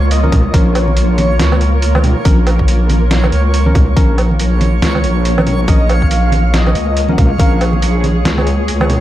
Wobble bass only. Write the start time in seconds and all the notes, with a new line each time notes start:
Already playing: C#2
0.32 C#2
0.54 A#1
1.39 C#2
2.25 A#1
3.32 C#2
3.75 C#2
3.97 A#1
4.82 C#2
5.04 A#1
5.68 A#1
6.75 C#2
7.18 C#2
7.39 A#1
8.25 C#2